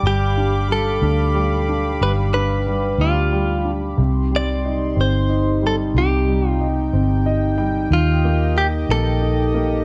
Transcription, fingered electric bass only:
X:1
M:6/8
L:1/8
Q:3/8=61
K:Cdor
V:1 name="Fingered electric bass" clef=bass
G,,,3 D,,3 | G,,,3 D,,3 | C,,3 G,,,3 | C,,3 G,,,3 |
E,,3 B,,,3 |]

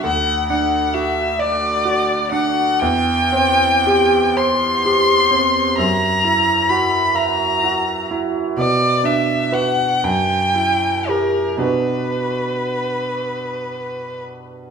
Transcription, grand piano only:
X:1
M:6/8
L:1/8
Q:3/8=41
K:Bm
V:1 name="Grand piano"
D,, D F d F D | E,, =C G =c G C | F,, E F e F E | B,, D [FB] F,, E [G^A] |
[B,,DFB]6 |]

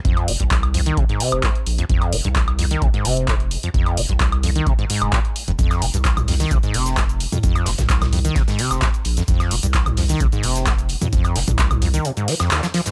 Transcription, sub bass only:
X:1
M:4/4
L:1/16
Q:1/4=130
K:Fm
V:1 name="Sub bass" clef=bass
F,,, z F,,, C,,4 z4 F,,, z2 B,,, z | F,,, z F,,, C,,4 z C,, z F,,,4 z2 | F,,, z F,,, C,,4 z4 F,,, z3 F,,, | F,,, z F,,, C,,4 z C,, z F,,,4 z2 |
F,,, z F,,, C,,4 z4 F,,, z2 B,,, z | F,,, z F,,, C,,4 z C,, z F,,,4 z2 | F,,, z F,,, C,,4 z8 z |]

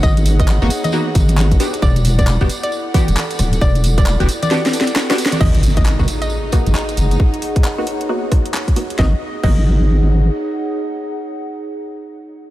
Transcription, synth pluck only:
X:1
M:4/4
L:1/16
Q:"Swing 16ths" 1/4=134
K:G#m
V:1 name="Synth pluck"
d2 z d2 z2 d2 z6 z | =d2 z d2 z2 d2 z6 z | =d2 z d2 z2 d2 z6 z | d2 z d2 z2 d2 z6 z |
z16 | d z3 d12- | d16 |]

